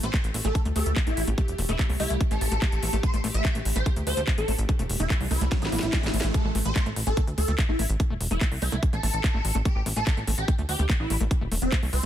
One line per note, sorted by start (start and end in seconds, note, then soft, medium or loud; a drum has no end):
0.00 0.10 A1 medium
0.00 6.38 A3 medium
0.00 0.06 A3 medium
0.00 6.36 G4 medium
0.00 0.22 C5 loud
0.00 closed hi-hat medium
0.14 0.17 A3 medium
0.14 kick loud
0.14 clap loud
0.14 closed hi-hat medium
0.24 0.31 A1 medium
0.24 closed hi-hat medium
0.34 0.41 A1 loud
0.34 0.37 A3 medium
0.34 open hi-hat loud
0.45 0.52 A1 medium
0.45 0.48 A3 medium
0.45 0.59 A4 loud
0.45 closed hi-hat medium
0.55 kick loud
0.55 closed hi-hat medium
0.65 0.72 D2 medium
0.65 0.68 A3 medium
0.65 closed hi-hat medium
0.76 0.83 D2 loud
0.76 0.79 A3 medium
0.76 0.90 A4 medium
0.76 open hi-hat loud
0.86 0.93 D2 medium
0.86 closed hi-hat medium
0.96 0.99 A3 medium
0.96 kick loud
0.96 clap loud
0.96 closed hi-hat medium
1.07 1.14 A1 medium
1.07 1.11 A3 medium
1.07 1.21 E4 loud
1.07 closed hi-hat medium
1.17 1.24 A1 loud
1.17 open hi-hat loud
1.27 1.34 A1 medium
1.27 1.30 A3 medium
1.27 closed hi-hat medium
1.38 1.42 A3 medium
1.38 kick loud
1.38 closed hi-hat medium
1.48 1.55 E1 medium
1.48 closed hi-hat medium
1.58 1.65 E1 loud
1.58 1.61 A3 medium
1.58 open hi-hat loud
1.69 1.76 E1 medium
1.69 1.73 A3 medium
1.69 1.83 E4 loud
1.69 closed hi-hat medium
1.79 kick loud
1.79 clap loud
1.79 closed hi-hat medium
1.90 1.96 C2 medium
1.90 1.92 A3 medium
1.90 open hi-hat medium
2.00 2.07 C2 loud
2.00 2.04 A3 medium
2.00 2.14 E4 loud
2.00 open hi-hat loud
2.10 2.17 C2 medium
2.10 closed hi-hat medium
2.21 2.23 A3 medium
2.21 kick loud
2.21 closed hi-hat medium
2.31 2.38 A1 medium
2.31 2.35 A3 medium
2.31 2.95 A4 loud
2.31 closed hi-hat medium
2.41 2.48 A1 loud
2.41 open hi-hat loud
2.52 2.58 A1 medium
2.52 2.54 A3 medium
2.52 closed hi-hat medium
2.62 2.66 A3 medium
2.62 kick loud
2.62 clap loud
2.62 closed hi-hat medium
2.72 2.79 A1 medium
2.72 closed hi-hat medium
2.83 2.89 A1 loud
2.83 2.85 A3 medium
2.83 open hi-hat loud
2.93 3.00 A1 medium
2.93 2.97 A3 medium
2.93 closed hi-hat medium
3.03 3.18 C5 loud
3.03 kick loud
3.03 closed hi-hat medium
3.03 riser medium
3.14 3.20 A1 medium
3.14 3.16 A3 medium
3.14 closed hi-hat medium
3.24 3.31 A1 loud
3.24 3.28 A3 medium
3.24 open hi-hat loud
3.34 3.41 A1 medium
3.34 3.53 E5 loud
3.34 closed hi-hat medium
3.45 3.47 A3 medium
3.45 kick loud
3.45 clap loud
3.45 closed hi-hat medium
3.55 3.62 A1 medium
3.55 3.59 A3 medium
3.55 closed hi-hat medium
3.65 3.72 A1 loud
3.65 open hi-hat loud
3.76 3.83 A1 medium
3.76 3.78 A3 medium
3.76 3.90 C5 loud
3.76 closed hi-hat medium
3.86 3.90 A3 medium
3.86 kick loud
3.86 closed hi-hat medium
3.96 4.03 D2 medium
3.96 closed hi-hat medium
4.07 4.14 D2 loud
4.07 4.09 A3 medium
4.07 4.21 C5 loud
4.07 open hi-hat loud
4.17 4.24 D2 medium
4.17 4.21 A3 medium
4.17 closed hi-hat medium
4.27 kick loud
4.27 clap loud
4.27 closed hi-hat medium
4.38 4.45 A1 medium
4.38 4.40 A3 medium
4.38 4.52 A4 loud
4.38 closed hi-hat medium
4.48 4.55 A1 loud
4.48 4.52 A3 medium
4.48 open hi-hat loud
4.58 4.65 A1 medium
4.58 closed hi-hat medium
4.69 4.71 A3 medium
4.69 kick loud
4.69 closed hi-hat medium
4.79 4.86 E1 medium
4.79 4.83 A3 medium
4.79 closed hi-hat medium
4.90 4.96 E1 loud
4.90 open hi-hat loud
5.00 5.07 E1 medium
5.00 5.02 A3 medium
5.00 5.14 E4 loud
5.00 closed hi-hat medium
5.10 5.14 A3 medium
5.10 kick loud
5.10 clap loud
5.10 closed hi-hat medium
5.21 5.27 C2 medium
5.21 open hi-hat medium
5.31 5.38 C2 loud
5.31 5.33 A3 medium
5.31 5.45 E4 loud
5.31 open hi-hat loud
5.41 5.48 C2 loud
5.41 5.45 A3 medium
5.41 closed hi-hat medium
5.52 kick loud
5.52 snare medium
5.52 closed hi-hat medium
5.62 5.69 A1 medium
5.62 5.64 A3 medium
5.62 6.26 E4 loud
5.62 snare medium
5.62 closed hi-hat medium
5.72 5.79 A1 loud
5.72 5.76 A#3 loud
5.72 open hi-hat loud
5.79 5.89 A1 medium
5.79 5.86 A3 medium
5.79 snare medium
5.79 closed hi-hat medium
5.93 5.97 A3 medium
5.93 kick loud
5.93 snare loud
5.93 clap loud
5.93 closed hi-hat medium
6.03 6.10 A1 medium
6.03 6.07 A#3 medium
6.03 snare loud
6.03 closed hi-hat medium
6.14 6.20 A1 loud
6.14 6.17 A3 loud
6.14 open hi-hat loud
6.21 6.31 A1 loud
6.21 6.26 A3 medium
6.21 snare loud
6.21 closed hi-hat medium
6.34 6.49 A4 loud
6.34 kick loud
6.34 closed hi-hat medium
6.45 6.51 A1 medium
6.45 6.47 A3 medium
6.55 6.62 A1 loud
6.55 6.59 A3 medium
6.55 open hi-hat loud
6.65 6.72 A1 loud
6.65 6.84 C5 loud
6.65 closed hi-hat medium
6.76 6.78 A3 medium
6.76 kick loud
6.76 clap loud
6.76 closed hi-hat medium
6.86 6.93 A1 medium
6.86 6.90 A3 medium
6.86 closed hi-hat soft
6.96 7.03 A1 loud
6.96 open hi-hat loud
7.07 7.14 A1 medium
7.07 7.09 A3 medium
7.07 7.21 A4 loud
7.07 closed hi-hat medium
7.17 7.21 A3 medium
7.17 kick loud
7.17 closed hi-hat medium
7.27 7.34 D2 medium
7.27 closed hi-hat soft
7.38 7.45 D2 loud
7.38 7.40 A3 medium
7.38 7.52 A4 loud
7.38 open hi-hat loud
7.48 7.55 D2 medium
7.48 7.52 A3 medium
7.48 closed hi-hat medium
7.58 kick loud
7.58 clap loud
7.58 closed hi-hat medium
7.69 7.76 A1 medium
7.69 7.71 A3 medium
7.69 7.83 E4 loud
7.79 7.86 A1 loud
7.79 7.83 A3 medium
7.79 open hi-hat loud
7.90 7.96 A1 loud
7.90 closed hi-hat medium
8.00 8.02 A3 medium
8.00 kick loud
8.00 closed hi-hat medium
8.10 8.17 E1 medium
8.10 8.14 A3 medium
8.21 8.27 E1 loud
8.21 open hi-hat loud
8.31 8.38 E1 medium
8.31 8.33 A3 medium
8.31 8.45 E4 loud
8.31 closed hi-hat medium
8.41 8.45 A3 medium
8.41 kick loud
8.41 clap loud
8.41 closed hi-hat medium
8.52 8.58 C2 medium
8.52 open hi-hat medium
8.62 8.69 C2 loud
8.62 8.64 A3 medium
8.62 8.76 E4 loud
8.62 open hi-hat loud
8.72 8.79 C2 medium
8.72 8.76 A3 medium
8.72 closed hi-hat medium
8.83 kick loud
8.83 closed hi-hat medium
8.93 9.00 A1 medium
8.93 8.95 A3 medium
8.93 9.57 A4 loud
8.93 closed hi-hat soft
9.03 9.10 A1 loud
9.03 9.07 A3 medium
9.03 open hi-hat loud
9.14 9.20 A1 medium
9.14 closed hi-hat medium
9.24 9.26 A3 medium
9.24 kick loud
9.24 clap loud
9.24 closed hi-hat medium
9.34 9.41 A1 medium
9.34 9.38 A3 medium
9.45 9.51 A1 loud
9.45 open hi-hat loud
9.55 9.62 A1 medium
9.55 9.57 A3 medium
9.55 closed hi-hat medium
9.65 9.69 A3 medium
9.65 9.80 G4 loud
9.65 kick loud
9.65 closed hi-hat medium
9.76 9.83 A1 medium
9.86 9.93 A1 loud
9.86 9.88 A3 medium
9.86 open hi-hat loud
9.96 10.03 A1 loud
9.96 10.00 A3 medium
9.96 10.16 A4 loud
9.96 closed hi-hat medium
10.07 kick loud
10.07 clap loud
10.07 closed hi-hat medium
10.17 10.24 A1 medium
10.17 10.19 A3 medium
10.17 closed hi-hat soft
10.27 10.34 A1 loud
10.27 10.31 A3 medium
10.27 open hi-hat loud
10.38 10.45 A1 medium
10.38 10.52 G4 loud
10.38 closed hi-hat soft
10.48 10.50 A3 medium
10.48 kick loud
10.48 closed hi-hat medium
10.59 10.65 D2 medium
10.59 10.62 A3 medium
10.59 closed hi-hat soft
10.69 10.76 D2 loud
10.69 10.83 G4 loud
10.69 open hi-hat loud
10.79 10.86 D2 medium
10.79 10.81 A3 medium
10.79 closed hi-hat medium
10.90 10.93 A3 medium
10.90 kick loud
10.90 clap loud
10.90 closed hi-hat medium
11.00 11.07 A1 medium
11.00 11.14 E4 loud
11.10 11.17 A1 loud
11.10 11.12 A3 medium
11.10 open hi-hat loud
11.21 11.27 A1 medium
11.21 11.24 A3 medium
11.21 closed hi-hat medium
11.31 kick loud
11.31 closed hi-hat medium
11.41 11.48 E1 medium
11.41 11.44 A3 medium
11.52 11.58 E1 loud
11.52 11.55 A3 medium
11.52 open hi-hat loud
11.62 11.69 E1 medium
11.62 11.76 C4 loud
11.62 closed hi-hat soft
11.72 11.75 A3 medium
11.72 kick loud
11.72 clap loud
11.72 closed hi-hat medium
11.83 11.89 C2 medium
11.83 11.86 A3 medium
11.83 open hi-hat medium
11.93 12.00 C2 loud
11.93 12.06 C4 loud
11.93 open hi-hat loud